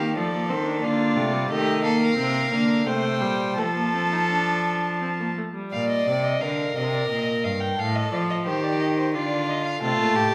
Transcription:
Already playing: D#3 G4 F5
0.00 A#3
0.16 F3 A3 A4 D5
0.33 A#3
0.49 D#3 C4 C5
0.65 D4
0.81 D3 A#3 F4 D5
1.16 C3 A3
1.32 G3
1.50 D#3 A3 G4 D#5
1.84 A#3 A4 F5
2.02 A#4
2.17 C3 C4
2.51 D3 A#3
2.86 C3 A3 C5 G5
3.21 A#2 G3
3.57 F3 A3 A4 A5
3.76 A#3
3.94 C4
4.12 D#4
4.29 D4
5.02 C4
5.20 A#3
5.37 A3
5.55 G3
5.72 A#2 D5 F5
5.90 D#5
6.07 C3 D5
6.24 D#5
6.41 D3 A#4 F5
6.76 C3 D#5
6.94 D5
7.09 A#2 D#5
7.44 G2 F5
7.60 G5
7.79 A2 A4 F5
7.96 D#5
8.12 F3 D5
8.30 D#5
8.46 D#3 G4 C5
8.63 D5
8.80 D#5
8.98 C5
9.14 D3 F4 D5
9.49 D#5
9.64 F5
9.81 C3 A3 F4 A5
9.99 A#2
10.15 A2 G4

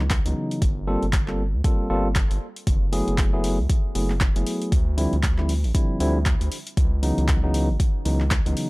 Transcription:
Already playing: C#2
0.10 kick, clap, closed hi-hat
0.26 C#2 C#3 E3 F#3 B3 D#4, closed hi-hat
0.51 closed hi-hat
0.62 G1, kick, closed hi-hat
0.87 G3 A#3 C4 F4 A4
1.03 G1, closed hi-hat
1.13 kick, clap, closed hi-hat
1.28 G3 A#3 C4 F4 A4, clap
1.54 D2
1.64 G3 A#3 C4 F4 A4, kick, closed hi-hat
1.90 G1 G3 A#3 C4 F4 A4
2.15 kick, clap, closed hi-hat
2.31 G1, closed hi-hat
2.56 closed hi-hat
2.67 F#1, kick, closed hi-hat
2.93 F#3 A3 B3 E4 G#4, open hi-hat
3.08 F#1, closed hi-hat
3.18 kick, clap, closed hi-hat
3.33 F#3 A3 B3 E4 G#4
3.44 open hi-hat
3.59 C#2
3.70 kick, closed hi-hat
3.95 F#1 F#3 A3 B3 E4 G#4, open hi-hat
4.10 clap
4.21 kick, clap, closed hi-hat
4.36 F#1 F#3 A3 B3 E4 G#4, closed hi-hat
4.47 open hi-hat
4.62 closed hi-hat
4.72 D2, kick, closed hi-hat
4.98 D3 F3 G3 C4 E4, open hi-hat
5.13 D2, closed hi-hat
5.23 kick, clap, closed hi-hat
5.38 D3 F3 G3 C4 E4, clap
5.49 open hi-hat
5.64 A1, open hi-hat
5.75 D3 F3 G3 C4 E4, kick, closed hi-hat
6.00 D2 D3 F3 G3 C4 E4, open hi-hat
6.26 kick, clap, closed hi-hat
6.41 D2, closed hi-hat
6.52 open hi-hat
6.67 closed hi-hat
6.77 C#2, kick, closed hi-hat
7.03 C#3 E3 F#3 B3 D#4, open hi-hat
7.18 C#2, closed hi-hat
7.28 kick, clap, closed hi-hat
7.44 C#3 E3 F#3 B3 D#4
7.54 open hi-hat
7.69 G#1
7.80 kick, closed hi-hat
8.05 C#2 C#3 E3 F#3 B3 D#4, open hi-hat
8.20 clap
8.31 kick, clap, closed hi-hat
8.46 C#2 C#3 E3 F#3 B3 D#4, closed hi-hat
8.57 open hi-hat

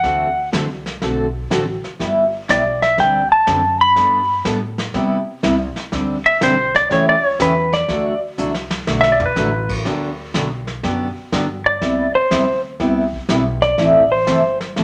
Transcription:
Already playing: F#5
0.03 D2 D3 A3 C4 F#4 A4, brush sweep, kick, snare
0.52 C2 D3 A3 C4 F#4 A4, kick, snare, hi-hat pedal
0.86 snare
1.02 B1 D3 A3 C4 F#4 A4, brush sweep, kick, snare
1.50 A1 D3 A3 C4 F#4 A4, kick, snare, hi-hat pedal
1.84 muted upright bass stroke, snare
1.99 G1 G3 B3 E4 G4, brush sweep, kick, snare
2.49 B1 G3 B3 E4 G4 D5, kick, snare, hi-hat pedal
2.82 E5, snare
2.97 D2 D3 G3 C4 D4 G4 G5, brush sweep, kick, snare
3.32 A5
3.47 F#2 D3 G3 C4 D4 G4, kick, snare, hi-hat pedal
3.81 B5
3.96 G2 G3 B3 D4 A4, brush sweep, kick, snare
4.44 A2 G3 B3 D4 A4, kick, snare, hi-hat pedal
4.78 snare
4.94 C3 G3 B3 E4 G4, brush sweep, kick, snare
5.43 C2 C3 G3 B3 E4 G4, kick, snare, hi-hat pedal
5.76 snare
5.92 D2 D3 G3 C4 D4 G4, brush sweep, kick, snare
6.26 E5
6.41 B1 D3 G3 C4 D4 G4 C5, kick, snare, hi-hat pedal
6.74 D5, snare
6.90 C#2 C#3 E3 A3 C#4 G4 C#5, brush sweep, kick, snare
7.09 D5
7.26 C#5
7.39 E2 C#3 E3 A3 C#4 G4 B4, kick, snare, hi-hat pedal
7.73 D5, snare
7.89 D2 D3 F#3 A3 D4 F#4, brush sweep, kick, snare
8.38 C2 D3 F#3 A3 D4 F#4, hi-hat pedal
8.54 snare
8.71 snare
8.87 B1 D3 F#3 A3 D4 F#4, snare
9.01 E5, snare
9.12 D5
9.20 floor tom
9.26 B4
9.36 A1 D3 F#3 A3 D4 F#4, snare, hi-hat pedal
9.69 kick, crash
9.85 D2 D3 F#3 B3 D4 G4, brush sweep, kick, snare
10.34 B1 D3 F#3 B3 D4 G4, kick, snare, hi-hat pedal
10.67 snare
10.83 F#2 D3 F#3 B3 D4 G4, brush sweep, kick, snare
11.16 muted upright bass stroke
11.32 G2 D3 F#3 B3 D4 G4, kick, snare, hi-hat pedal
11.66 D5
11.81 C2 C3 G3 B3 E4 G4, brush sweep, kick, snare
12.14 C5, muted upright bass stroke
12.30 D2 C3 G3 B3 E4 G4, kick, snare, hi-hat pedal
12.80 C2 C3 G3 B3 E4 G4, brush sweep, kick, snare
13.13 kick
13.29 B1 C3 G3 B3 E4 G4, kick, snare, hi-hat pedal
13.62 D5, snare
13.78 A1 E3 A3 C4 E4 A4, brush sweep, kick, snare
14.12 C5
14.27 G1 E3 A3 C4 E4 A4, kick, snare, hi-hat pedal
14.60 snare
14.76 A1 E3 A3 C4 E4 A4, brush sweep, kick, snare

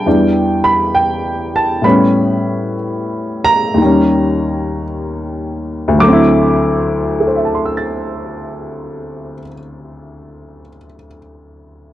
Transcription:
Already playing: G5
0.06 E2 E3 G3 D4
0.64 B5
0.95 G5
1.56 A5
1.82 A2 G3 B3 B5
1.87 C#4
3.44 A#5
3.74 D#2 D#3
3.82 G3 C#4
5.88 D2
5.93 D3
5.98 F#3 D6
6.03 A3
6.08 C4
6.13 E4
7.20 A4
7.28 C5
7.36 E5
7.45 A5
7.55 C6
7.66 E6
7.77 A6

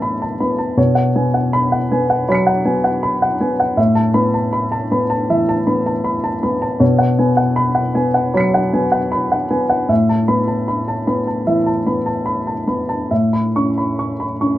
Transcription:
Already playing: E3 B3 E5 A5 B5
0.02 B5
0.22 A5
0.40 B3 B5
0.58 A5
0.77 B2 C#5
0.95 F#5
1.16 B3 G#5
1.34 F#5
1.53 B5
1.72 F#5
1.92 B3 G#5
2.10 F#5
2.29 F#3 C#5 B5 B6
2.35 C#7
2.47 F#5
2.65 B3 G#5
2.84 F#5
3.03 B5
3.22 F#5
3.41 B3 G#5
3.60 F#5
3.77 A2 E5
3.95 A5
4.14 B3 B5
4.34 A5
4.53 B5
4.72 A5
4.91 B3 B5
5.10 A5
5.30 E3 E5
5.49 A5
5.67 B3 B5
5.86 A5
6.04 B5
6.24 A5
6.43 B3 B5
6.62 A5
6.80 B2 C#5
6.99 F#5
7.19 B3 G#5
7.37 F#5
7.56 B5
7.75 F#5
7.95 B3 G#5
8.14 F#5
8.34 F#3 C#5 B5 B6
8.40 C#7
8.54 F#5
8.73 B3 G#5
8.92 F#5
9.12 B5
9.32 F#5
9.51 B3 G#5
9.70 F#5
9.89 A2 E5
10.09 A5
10.28 B3 B5
10.48 A5
10.68 B5
10.88 A5
11.07 B3 B5
11.27 A5
11.47 E3 E5
11.66 A5
11.87 B3 B5
12.06 A5
12.26 B5
12.47 A5
12.67 B3 B5
12.89 A5
13.11 A2 E5
13.33 B5
13.56 C#4 C#6
13.78 B5
13.99 C#6
14.20 B5
14.41 C#4 C#6

